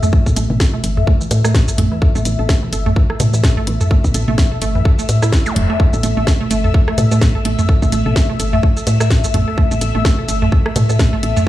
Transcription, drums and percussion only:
0.03 mid tom, shaker
0.13 kick
0.26 kick, shaker
0.36 closed hi-hat, shaker
0.50 high tom
0.60 kick, snare
0.74 high tom
0.84 closed hi-hat, shaker
0.97 mid tom
1.07 kick
1.21 shaker
1.31 closed hi-hat, shaker
1.45 cross-stick, shaker
1.55 kick, snare
1.68 shaker
1.78 closed hi-hat, mid tom
2.02 kick
2.15 shaker
2.25 closed hi-hat, shaker
2.49 kick, snare
2.63 high tom
2.73 closed hi-hat, shaker
2.86 mid tom
2.96 kick
3.10 cross-stick
3.20 closed hi-hat, high tom, shaker
3.34 shaker
3.44 kick, snare
3.67 closed hi-hat
3.81 mid tom, shaker
3.91 kick
4.04 kick, shaker
4.14 closed hi-hat, shaker
4.28 high tom
4.38 kick, snare
4.52 high tom
4.62 closed hi-hat, shaker
4.75 mid tom
4.85 kick
4.99 shaker
5.09 closed hi-hat, shaker
5.22 cross-stick, shaker
5.33 kick, snare
5.46 shaker
5.56 closed hi-hat, mid tom
5.80 kick
5.93 shaker
6.03 closed hi-hat, shaker
6.27 kick, snare
6.41 high tom
6.51 closed hi-hat, shaker
6.64 mid tom
6.74 kick
6.88 cross-stick
6.98 closed hi-hat, high tom, shaker
7.11 shaker
7.21 kick, snare
7.45 closed hi-hat
7.59 mid tom, shaker
7.69 kick
7.82 kick, shaker
7.92 closed hi-hat, shaker
8.06 high tom
8.16 kick, snare
8.30 high tom
8.40 closed hi-hat, shaker
8.53 mid tom
8.63 kick
8.77 shaker
8.87 closed hi-hat, shaker
9.00 cross-stick, shaker
9.10 kick, snare
9.24 shaker
9.34 closed hi-hat, mid tom
9.58 kick
9.71 shaker
9.81 closed hi-hat, shaker
10.05 kick, snare
10.19 high tom
10.29 closed hi-hat, shaker
10.42 mid tom
10.52 kick
10.66 cross-stick
10.76 closed hi-hat, high tom, shaker
10.89 shaker
10.99 kick, snare
11.23 closed hi-hat
11.37 mid tom, shaker

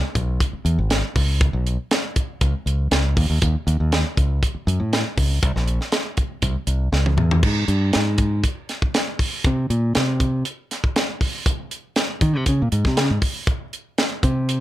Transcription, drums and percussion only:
0.15 kick, closed hi-hat
0.40 kick, closed hi-hat
0.66 closed hi-hat
0.90 snare, closed hi-hat
1.16 kick, open hi-hat
1.41 kick, closed hi-hat
1.67 closed hi-hat
1.91 snare, closed hi-hat
2.16 kick, closed hi-hat
2.41 kick, closed hi-hat
2.67 closed hi-hat
2.91 snare, closed hi-hat
3.17 kick, open hi-hat
3.42 kick, closed hi-hat
3.68 closed hi-hat
3.92 snare, closed hi-hat
4.17 kick, closed hi-hat
4.43 kick, closed hi-hat
4.68 closed hi-hat
4.93 snare, closed hi-hat
5.18 kick, open hi-hat
5.43 kick, closed hi-hat
5.56 snare
5.68 closed hi-hat
5.81 snare
5.92 snare, closed hi-hat
6.17 kick, closed hi-hat
6.42 kick, closed hi-hat
6.67 closed hi-hat
6.93 snare
7.06 high tom
7.18 mid tom
7.31 floor tom
7.43 kick, crash
7.68 closed hi-hat
7.93 snare, closed hi-hat
8.18 kick, closed hi-hat
8.44 kick, closed hi-hat
8.69 snare, closed hi-hat
8.82 kick
8.94 snare, closed hi-hat
9.19 kick, open hi-hat
9.44 kick, closed hi-hat
9.70 closed hi-hat
9.95 snare, closed hi-hat
10.20 kick, closed hi-hat
10.45 closed hi-hat
10.71 snare, closed hi-hat
10.84 kick
10.96 snare, closed hi-hat
11.21 kick, open hi-hat
11.46 kick, closed hi-hat
11.71 closed hi-hat
11.96 snare, closed hi-hat
12.21 kick, closed hi-hat
12.46 kick, closed hi-hat
12.72 closed hi-hat
12.85 kick, snare
12.97 snare, closed hi-hat
13.22 kick, open hi-hat
13.47 kick, closed hi-hat
13.73 closed hi-hat
13.98 snare, closed hi-hat
14.23 kick, closed hi-hat
14.49 closed hi-hat

